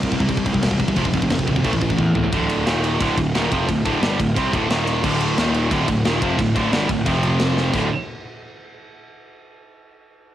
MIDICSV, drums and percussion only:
0, 0, Header, 1, 2, 480
1, 0, Start_track
1, 0, Key_signature, -1, "minor"
1, 0, Tempo, 338028
1, 1377, Time_signature, 4, 2, 24, 8
1, 14694, End_track
2, 0, Start_track
2, 0, Title_t, "Drums"
2, 46, Note_on_c, 9, 36, 92
2, 167, Note_on_c, 9, 49, 72
2, 168, Note_off_c, 9, 36, 0
2, 168, Note_on_c, 9, 36, 84
2, 289, Note_off_c, 9, 36, 0
2, 289, Note_on_c, 9, 36, 87
2, 309, Note_off_c, 9, 49, 0
2, 409, Note_off_c, 9, 36, 0
2, 409, Note_on_c, 9, 36, 97
2, 409, Note_on_c, 9, 49, 94
2, 530, Note_off_c, 9, 36, 0
2, 530, Note_on_c, 9, 36, 87
2, 551, Note_off_c, 9, 49, 0
2, 652, Note_off_c, 9, 36, 0
2, 652, Note_on_c, 9, 36, 89
2, 656, Note_on_c, 9, 49, 63
2, 772, Note_off_c, 9, 36, 0
2, 772, Note_on_c, 9, 36, 93
2, 798, Note_off_c, 9, 49, 0
2, 892, Note_off_c, 9, 36, 0
2, 892, Note_on_c, 9, 36, 99
2, 893, Note_on_c, 9, 49, 89
2, 897, Note_on_c, 9, 38, 126
2, 1011, Note_off_c, 9, 36, 0
2, 1011, Note_on_c, 9, 36, 98
2, 1035, Note_off_c, 9, 49, 0
2, 1039, Note_off_c, 9, 38, 0
2, 1130, Note_on_c, 9, 49, 61
2, 1132, Note_off_c, 9, 36, 0
2, 1132, Note_on_c, 9, 36, 79
2, 1253, Note_off_c, 9, 36, 0
2, 1253, Note_on_c, 9, 36, 98
2, 1272, Note_off_c, 9, 49, 0
2, 1364, Note_on_c, 9, 49, 86
2, 1373, Note_off_c, 9, 36, 0
2, 1373, Note_on_c, 9, 36, 90
2, 1494, Note_off_c, 9, 36, 0
2, 1494, Note_on_c, 9, 36, 86
2, 1506, Note_off_c, 9, 49, 0
2, 1612, Note_on_c, 9, 49, 63
2, 1614, Note_off_c, 9, 36, 0
2, 1614, Note_on_c, 9, 36, 88
2, 1735, Note_off_c, 9, 36, 0
2, 1735, Note_on_c, 9, 36, 89
2, 1754, Note_off_c, 9, 49, 0
2, 1849, Note_on_c, 9, 49, 85
2, 1853, Note_on_c, 9, 38, 117
2, 1854, Note_off_c, 9, 36, 0
2, 1854, Note_on_c, 9, 36, 91
2, 1976, Note_off_c, 9, 36, 0
2, 1976, Note_on_c, 9, 36, 88
2, 1991, Note_off_c, 9, 49, 0
2, 1995, Note_off_c, 9, 38, 0
2, 2091, Note_on_c, 9, 49, 62
2, 2096, Note_off_c, 9, 36, 0
2, 2096, Note_on_c, 9, 36, 84
2, 2217, Note_off_c, 9, 36, 0
2, 2217, Note_on_c, 9, 36, 80
2, 2233, Note_off_c, 9, 49, 0
2, 2332, Note_on_c, 9, 49, 90
2, 2337, Note_off_c, 9, 36, 0
2, 2337, Note_on_c, 9, 36, 95
2, 2456, Note_off_c, 9, 36, 0
2, 2456, Note_on_c, 9, 36, 88
2, 2474, Note_off_c, 9, 49, 0
2, 2569, Note_on_c, 9, 49, 61
2, 2577, Note_off_c, 9, 36, 0
2, 2577, Note_on_c, 9, 36, 82
2, 2699, Note_off_c, 9, 36, 0
2, 2699, Note_on_c, 9, 36, 95
2, 2711, Note_off_c, 9, 49, 0
2, 2816, Note_on_c, 9, 48, 67
2, 2819, Note_off_c, 9, 36, 0
2, 2819, Note_on_c, 9, 36, 94
2, 2958, Note_off_c, 9, 48, 0
2, 2961, Note_off_c, 9, 36, 0
2, 3056, Note_on_c, 9, 43, 100
2, 3198, Note_off_c, 9, 43, 0
2, 3301, Note_on_c, 9, 51, 115
2, 3303, Note_on_c, 9, 36, 113
2, 3443, Note_off_c, 9, 51, 0
2, 3445, Note_off_c, 9, 36, 0
2, 3543, Note_on_c, 9, 51, 83
2, 3685, Note_off_c, 9, 51, 0
2, 3786, Note_on_c, 9, 51, 109
2, 3791, Note_on_c, 9, 38, 111
2, 3928, Note_off_c, 9, 51, 0
2, 3933, Note_off_c, 9, 38, 0
2, 4028, Note_on_c, 9, 51, 83
2, 4170, Note_off_c, 9, 51, 0
2, 4267, Note_on_c, 9, 36, 113
2, 4267, Note_on_c, 9, 51, 117
2, 4409, Note_off_c, 9, 36, 0
2, 4409, Note_off_c, 9, 51, 0
2, 4509, Note_on_c, 9, 36, 89
2, 4512, Note_on_c, 9, 51, 77
2, 4651, Note_off_c, 9, 36, 0
2, 4654, Note_off_c, 9, 51, 0
2, 4756, Note_on_c, 9, 51, 108
2, 4760, Note_on_c, 9, 38, 116
2, 4898, Note_off_c, 9, 51, 0
2, 4902, Note_off_c, 9, 38, 0
2, 4994, Note_on_c, 9, 36, 102
2, 5000, Note_on_c, 9, 51, 77
2, 5136, Note_off_c, 9, 36, 0
2, 5142, Note_off_c, 9, 51, 0
2, 5234, Note_on_c, 9, 36, 93
2, 5236, Note_on_c, 9, 51, 104
2, 5376, Note_off_c, 9, 36, 0
2, 5378, Note_off_c, 9, 51, 0
2, 5475, Note_on_c, 9, 36, 106
2, 5475, Note_on_c, 9, 51, 80
2, 5617, Note_off_c, 9, 36, 0
2, 5617, Note_off_c, 9, 51, 0
2, 5717, Note_on_c, 9, 51, 99
2, 5721, Note_on_c, 9, 38, 116
2, 5859, Note_off_c, 9, 51, 0
2, 5863, Note_off_c, 9, 38, 0
2, 5958, Note_on_c, 9, 36, 98
2, 5962, Note_on_c, 9, 51, 81
2, 6100, Note_off_c, 9, 36, 0
2, 6104, Note_off_c, 9, 51, 0
2, 6198, Note_on_c, 9, 36, 108
2, 6200, Note_on_c, 9, 51, 111
2, 6340, Note_off_c, 9, 36, 0
2, 6342, Note_off_c, 9, 51, 0
2, 6438, Note_on_c, 9, 36, 104
2, 6443, Note_on_c, 9, 51, 82
2, 6580, Note_off_c, 9, 36, 0
2, 6585, Note_off_c, 9, 51, 0
2, 6679, Note_on_c, 9, 51, 106
2, 6684, Note_on_c, 9, 38, 122
2, 6821, Note_off_c, 9, 51, 0
2, 6826, Note_off_c, 9, 38, 0
2, 6919, Note_on_c, 9, 51, 80
2, 7061, Note_off_c, 9, 51, 0
2, 7155, Note_on_c, 9, 36, 111
2, 7155, Note_on_c, 9, 49, 109
2, 7297, Note_off_c, 9, 36, 0
2, 7297, Note_off_c, 9, 49, 0
2, 7391, Note_on_c, 9, 51, 83
2, 7533, Note_off_c, 9, 51, 0
2, 7636, Note_on_c, 9, 51, 115
2, 7640, Note_on_c, 9, 38, 112
2, 7778, Note_off_c, 9, 51, 0
2, 7782, Note_off_c, 9, 38, 0
2, 7873, Note_on_c, 9, 51, 80
2, 8015, Note_off_c, 9, 51, 0
2, 8111, Note_on_c, 9, 36, 110
2, 8115, Note_on_c, 9, 51, 121
2, 8253, Note_off_c, 9, 36, 0
2, 8257, Note_off_c, 9, 51, 0
2, 8351, Note_on_c, 9, 36, 92
2, 8353, Note_on_c, 9, 51, 82
2, 8493, Note_off_c, 9, 36, 0
2, 8495, Note_off_c, 9, 51, 0
2, 8594, Note_on_c, 9, 51, 118
2, 8598, Note_on_c, 9, 38, 115
2, 8736, Note_off_c, 9, 51, 0
2, 8740, Note_off_c, 9, 38, 0
2, 8832, Note_on_c, 9, 36, 107
2, 8837, Note_on_c, 9, 51, 74
2, 8974, Note_off_c, 9, 36, 0
2, 8979, Note_off_c, 9, 51, 0
2, 9071, Note_on_c, 9, 36, 101
2, 9075, Note_on_c, 9, 51, 99
2, 9213, Note_off_c, 9, 36, 0
2, 9217, Note_off_c, 9, 51, 0
2, 9312, Note_on_c, 9, 36, 116
2, 9318, Note_on_c, 9, 51, 75
2, 9454, Note_off_c, 9, 36, 0
2, 9460, Note_off_c, 9, 51, 0
2, 9553, Note_on_c, 9, 51, 100
2, 9558, Note_on_c, 9, 38, 109
2, 9695, Note_off_c, 9, 51, 0
2, 9700, Note_off_c, 9, 38, 0
2, 9787, Note_on_c, 9, 36, 100
2, 9787, Note_on_c, 9, 51, 76
2, 9929, Note_off_c, 9, 36, 0
2, 9929, Note_off_c, 9, 51, 0
2, 10025, Note_on_c, 9, 51, 109
2, 10027, Note_on_c, 9, 36, 116
2, 10167, Note_off_c, 9, 51, 0
2, 10169, Note_off_c, 9, 36, 0
2, 10268, Note_on_c, 9, 51, 75
2, 10410, Note_off_c, 9, 51, 0
2, 10502, Note_on_c, 9, 51, 105
2, 10506, Note_on_c, 9, 38, 120
2, 10644, Note_off_c, 9, 51, 0
2, 10648, Note_off_c, 9, 38, 0
2, 10755, Note_on_c, 9, 38, 66
2, 10897, Note_off_c, 9, 38, 0
2, 10983, Note_on_c, 9, 57, 98
2, 10985, Note_on_c, 9, 36, 108
2, 11125, Note_off_c, 9, 57, 0
2, 11127, Note_off_c, 9, 36, 0
2, 14694, End_track
0, 0, End_of_file